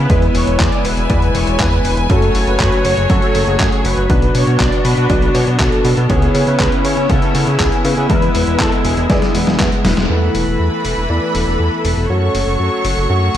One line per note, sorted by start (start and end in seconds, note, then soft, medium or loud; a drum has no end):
0.00 2.06 B3 medium
0.00 0.36 B4 loud
0.10 0.30 E2 loud
0.10 1.07 G#3 medium
0.10 1.07 B3 medium
0.10 1.07 E4 medium
0.10 2.08 E4 medium
0.10 1.07 B4 loud
0.10 4.06 G#5 medium
0.10 kick loud
0.10 closed hi-hat medium
0.22 closed hi-hat soft
0.34 0.45 E1 medium
0.34 0.61 C#5 loud
0.34 open hi-hat loud
0.47 0.57 E1 loud
0.47 closed hi-hat soft
0.59 0.70 E2 medium
0.59 0.86 D5 loud
0.59 kick loud
0.59 clap loud
0.59 closed hi-hat medium
0.72 closed hi-hat soft
0.85 0.95 E1 medium
0.85 1.36 B4 loud
0.85 open hi-hat loud
0.97 1.07 E1 loud
0.97 closed hi-hat soft
1.10 1.30 E2 loud
1.10 2.07 G#3 medium
1.10 2.07 B3 medium
1.10 2.07 E4 medium
1.10 2.07 D5 medium
1.10 kick loud
1.10 closed hi-hat medium
1.22 closed hi-hat soft
1.35 1.45 E1 loud
1.35 1.61 C#5 loud
1.35 open hi-hat loud
1.47 1.57 E1 loud
1.47 closed hi-hat soft
1.60 1.80 E2 medium
1.60 2.09 B4 loud
1.60 kick loud
1.60 clap loud
1.60 closed hi-hat medium
1.72 closed hi-hat soft
1.85 1.95 E1 medium
1.85 open hi-hat loud
1.97 2.07 E1 loud
1.97 closed hi-hat soft
2.10 2.30 F#2 loud
2.10 4.08 F#3 medium
2.10 3.07 A3 medium
2.10 3.07 C#4 medium
2.10 4.08 F#4 medium
2.10 3.07 F#4 medium
2.10 2.49 A4 loud
2.10 3.07 A4 loud
2.10 4.08 C#5 medium
2.10 kick loud
2.10 closed hi-hat medium
2.22 closed hi-hat soft
2.35 2.45 F#1 medium
2.35 open hi-hat loud
2.47 2.57 F#1 loud
2.47 2.86 B4 loud
2.47 closed hi-hat soft
2.60 2.70 F#2 medium
2.60 kick loud
2.60 clap loud
2.60 closed hi-hat medium
2.72 closed hi-hat soft
2.85 2.95 F#1 medium
2.85 3.11 C#5 loud
2.85 open hi-hat loud
2.97 3.07 F#1 loud
2.97 closed hi-hat soft
3.10 3.20 F#2 medium
3.10 4.07 A3 medium
3.10 4.07 C#4 medium
3.10 4.07 F#4 medium
3.10 3.49 A4 loud
3.10 4.07 C#5 medium
3.10 kick loud
3.10 closed hi-hat medium
3.22 closed hi-hat soft
3.35 3.45 F#1 medium
3.35 open hi-hat loud
3.47 3.57 F#1 medium
3.47 3.86 G#4 loud
3.47 closed hi-hat soft
3.60 3.70 F#2 medium
3.60 kick loud
3.60 clap loud
3.60 closed hi-hat medium
3.72 closed hi-hat soft
3.85 3.95 F#1 loud
3.85 4.34 B4 loud
3.85 open hi-hat loud
3.97 4.07 F#1 loud
3.97 closed hi-hat soft
4.10 4.30 B1 loud
4.10 5.07 B2 medium
4.10 5.07 F#3 medium
4.10 5.07 B3 medium
4.10 10.06 B3 medium
4.10 5.07 D4 medium
4.10 6.08 D4 medium
4.10 6.08 F#4 medium
4.10 5.07 B4 loud
4.10 kick loud
4.10 closed hi-hat medium
4.22 closed hi-hat soft
4.35 4.45 B2 medium
4.35 4.61 C#5 loud
4.35 open hi-hat loud
4.47 4.57 B2 medium
4.47 closed hi-hat soft
4.60 4.70 B1 medium
4.60 4.84 D5 loud
4.60 kick loud
4.60 clap loud
4.60 closed hi-hat medium
4.72 closed hi-hat soft
4.85 4.95 B2 medium
4.85 5.31 B4 loud
4.85 open hi-hat loud
4.97 5.07 B2 loud
4.97 closed hi-hat soft
5.10 5.30 B1 loud
5.10 6.07 B2 medium
5.10 6.07 F#3 medium
5.10 6.07 B3 medium
5.10 6.07 D4 medium
5.10 6.07 D5 loud
5.10 kick loud
5.10 closed hi-hat medium
5.22 closed hi-hat soft
5.34 5.45 B2 loud
5.34 5.46 C#5 loud
5.34 open hi-hat loud
5.47 5.57 B2 loud
5.47 closed hi-hat soft
5.60 5.70 B1 medium
5.60 6.11 A4 medium
5.60 kick loud
5.60 clap loud
5.60 closed hi-hat medium
5.72 closed hi-hat soft
5.85 5.95 B2 loud
5.85 open hi-hat loud
5.97 6.07 B2 loud
5.97 closed hi-hat soft
6.10 6.30 C#2 loud
6.10 7.07 C#3 medium
6.10 7.07 B3 medium
6.10 8.08 C#4 medium
6.10 10.06 E4 medium
6.10 7.07 E4 medium
6.10 6.49 G#4 loud
6.10 7.07 G#4 medium
6.10 7.07 C#5 loud
6.10 kick loud
6.10 closed hi-hat medium
6.22 closed hi-hat soft
6.35 6.45 C#3 medium
6.35 open hi-hat loud
6.47 6.57 C#3 medium
6.47 6.86 B4 loud
6.47 closed hi-hat soft
6.60 6.70 C#2 medium
6.60 kick loud
6.60 clap loud
6.60 closed hi-hat medium
6.72 closed hi-hat soft
6.85 6.95 C#3 medium
6.85 7.11 C#5 loud
6.85 open hi-hat loud
6.97 7.07 C#3 loud
6.97 closed hi-hat soft
7.10 7.20 C#2 medium
7.10 8.07 C#3 medium
7.10 8.07 B3 medium
7.10 8.07 E4 medium
7.10 7.49 A4 loud
7.10 8.07 F#5 loud
7.10 8.07 G#5 medium
7.10 kick loud
7.10 closed hi-hat medium
7.22 closed hi-hat soft
7.35 7.45 C#3 loud
7.35 open hi-hat loud
7.47 7.57 C#3 loud
7.47 7.86 G#4 loud
7.47 closed hi-hat soft
7.60 7.70 C#2 medium
7.60 kick loud
7.60 clap loud
7.60 closed hi-hat medium
7.72 closed hi-hat soft
7.85 7.95 C#3 loud
7.85 8.09 B4 medium
7.85 open hi-hat loud
7.97 8.07 C#3 loud
7.97 closed hi-hat soft
8.10 8.30 E2 loud
8.10 9.07 G#3 medium
8.10 10.08 G#3 medium
8.10 9.07 B3 medium
8.10 9.07 E4 medium
8.10 8.62 B4 loud
8.10 9.07 B4 loud
8.10 kick loud
8.10 closed hi-hat loud
8.22 closed hi-hat soft
8.35 8.45 E1 medium
8.35 open hi-hat loud
8.47 8.57 E1 medium
8.47 closed hi-hat soft
8.60 8.70 E2 medium
8.60 8.86 A4 loud
8.60 kick loud
8.60 clap loud
8.60 closed hi-hat loud
8.72 closed hi-hat soft
8.85 8.95 E1 medium
8.85 9.85 G#4 medium
8.85 open hi-hat loud
8.97 9.07 E1 loud
8.97 closed hi-hat soft
9.10 9.20 E2 medium
9.10 9.32 G#3 medium
9.10 9.32 B3 medium
9.10 9.32 E4 medium
9.10 9.32 D5 medium
9.10 kick loud
9.10 snare medium
9.10 closed hi-hat medium
9.22 snare medium
9.22 closed hi-hat soft
9.35 9.45 E1 medium
9.35 9.82 G#3 medium
9.35 9.82 B3 medium
9.35 9.82 E4 medium
9.35 9.82 B4 medium
9.35 open hi-hat loud
9.47 9.57 E1 loud
9.47 snare medium
9.47 closed hi-hat soft
9.60 9.70 E2 medium
9.60 kick loud
9.60 snare medium
9.60 clap loud
9.60 closed hi-hat loud
9.72 closed hi-hat soft
9.85 9.95 E1 medium
9.85 10.07 G#3 loud
9.85 10.07 B3 medium
9.85 10.07 E4 medium
9.85 10.07 B4 loud
9.85 snare loud
9.85 open hi-hat loud
9.97 10.07 E1 medium
9.97 snare medium
9.97 closed hi-hat soft
10.10 10.30 E2 medium
10.10 12.08 E3 medium
10.10 11.07 E3 medium
10.10 11.07 A3 medium
10.10 11.07 B3 medium
10.10 12.08 E4 medium
10.10 11.07 E4 medium
10.10 13.37 A4 medium
10.10 12.08 B4 medium
10.10 11.07 B4 medium
10.10 12.08 B5 medium
10.35 10.45 E1 medium
10.35 open hi-hat loud
10.47 10.57 E1 medium
10.60 10.70 E2 medium
10.85 10.95 E1 medium
10.85 open hi-hat loud
10.97 11.07 E1 medium
11.10 11.20 E2 medium
11.10 12.07 E3 medium
11.10 12.07 A3 medium
11.10 12.07 B3 medium
11.10 12.07 E4 medium
11.10 12.07 D5 medium
11.35 11.45 E1 medium
11.35 open hi-hat medium
11.47 11.57 E1 medium
11.60 11.70 E2 medium
11.85 11.95 E1 medium
11.85 open hi-hat loud
11.97 12.07 E1 medium
12.10 12.30 F#2 medium
12.10 13.37 F#3 medium
12.10 13.07 A3 medium
12.10 13.07 C#4 medium
12.10 13.07 F#4 medium
12.10 13.37 F#4 medium
12.10 13.37 C#5 medium
12.10 13.07 C#5 medium
12.10 13.37 C#6 medium
12.35 12.45 F#1 medium
12.35 open hi-hat medium
12.47 12.57 F#1 medium
12.60 12.70 F#2 medium
12.85 12.95 F#1 medium
12.85 open hi-hat loud
12.97 13.07 F#1 medium
13.10 13.30 F#2 medium
13.10 13.37 A3 medium
13.10 13.37 C#4 medium
13.10 13.37 F#4 medium
13.10 13.37 F#5 medium